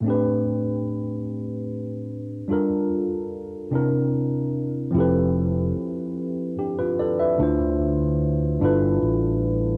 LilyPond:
<<
  \new Staff \with { instrumentName = "Tine electric piano" } { \time 6/8 \key a \minor \tempo 4. = 49 << { r2. | r2. | r2 <d' g'>16 <f' b'>16 <a' d''>16 <b' e''>16~ | <b' e''>16 r2 r8. | } \\ { <a, a c' d' g' b'>2. | <g d' f' a' bes'>4. <c c' d' e' bes'>4. | <f c' e' g' a' b'>2. | <d d' e' f' c''>4. <g d' e' f' a' b'>4. | } >> }
  \new Staff \with { instrumentName = "Fretless electric bass" } { \clef bass \time 6/8 \key a \minor r2. | r2. | f,,4 r2 | d,4. g,,8 a,,4 | }
>>